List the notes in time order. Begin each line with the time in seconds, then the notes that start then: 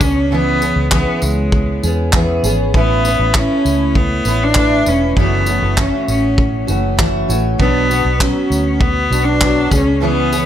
0.00 C#2 B3 C#4 G#4, kick, tambourine
0.31 C#3 E3 B3 C#4 G#4
0.60 B3 C#4 G#4, tambourine
0.76 C#2
0.91 E3 B3 C#4 G#4, kick, clap
1.22 C#2 G#3, tambourine
1.52 kick
1.83 E2 B3 C#4 G#4, tambourine
2.13 E3 B3 C#4 G#4, kick, clap
2.43 G#1 B3 C#4 G#4, tambourine
2.74 A1 A3 B3 C#4 E4 B4, kick
3.05 C#4 E4 B4, tambourine
3.19 A1
3.34 A3 C#4 E4 B4, kick, clap
3.65 C#2, tambourine
3.95 B3, kick
4.25 A1 C#4 E4 B4, tambourine
4.43 D4
4.55 A3 E4 B4, kick, clap
4.86 E1 C#4 E4 B4, tambourine
5.16 F#1 F#2 C#3 E3 A3 B3 C#4 F#4, kick
5.46 E3 A3 C#4 F#4, tambourine
5.62 F#1
5.77 E3 A3 C#4 F#4, kick, clap
6.08 A1 C#4, tambourine
6.38 kick
6.67 F#1 E3 A3 C#4 F#4, tambourine
6.97 E3 A3 C#4 F#4, kick, clap
7.28 A1 E3 A3 C#4 F#4, tambourine
7.58 B1 B2 F#3 B3 D4 F#4, kick
7.90 B3 D4 F#4, tambourine
8.05 B1
8.20 F#3 B3 C#4 F#4, kick, clap
8.50 D2, tambourine
8.80 B3, kick
9.10 B1 B3 D4 F#4, tambourine
9.24 D4
9.41 F#3 B3 D4 F#4, kick, clap
9.70 C#2 B3 C#4 G#4, kick, tambourine
10.00 C#3 E3 B3 C#4 G#4
10.33 B3 C#4 G#4, tambourine